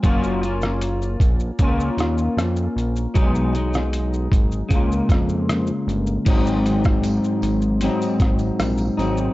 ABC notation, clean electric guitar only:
X:1
M:4/4
L:1/8
Q:1/4=77
K:Abmix
V:1 name="Clean electric guitar"
[G,B,DF] [B,DF]3 [B,DF]4 | [_C,G,A,E] [G,A,E]3 [D,A,B,F]4 | [A,,G,CE]4 [A,,G,CE]3 [G,CE] |]